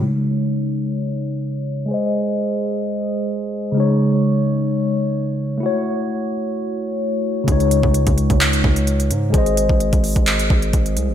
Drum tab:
HH |----------------|----------------|----------------|----------------|
CP |----------------|----------------|----------------|----------------|
BD |----------------|----------------|----------------|----------------|

HH |xxx-xxxxxx-xxxx-|xxx-xxoxxx-xxxx-|
CP |--------x-------|--------x-------|
BD |o--o-o-o--o-----|o--o-o-o--o-o---|